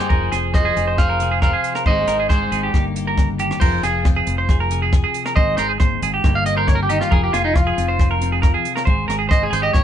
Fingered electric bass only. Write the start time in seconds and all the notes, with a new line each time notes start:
0.11 F1
0.32 F1
0.76 F1
1.86 G#1
2.08 G#1
2.52 G#1
2.74 G1
3.62 F1
3.83 F1
4.27 F1
5.36 G#1
5.59 G#1
6.02 G#1
6.24 G1
7.12 F1
7.33 F1
7.78 F1
8.87 G#1
9.09 G#1
9.52 G#1
9.74 G1